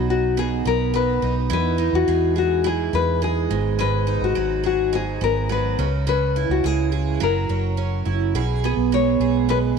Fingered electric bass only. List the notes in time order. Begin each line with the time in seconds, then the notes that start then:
Already playing: B1
0.65 B1
1.22 B1
1.50 E2
1.93 E2
2.08 E2
2.93 E2
3.50 G#1
4.21 G#1
4.36 G#1
5.21 G#1
5.79 C#2
6.49 C#2
6.64 C#2
7.21 F#1
7.49 F#1
8.06 F#1
8.35 B1
8.77 B1
9.20 B1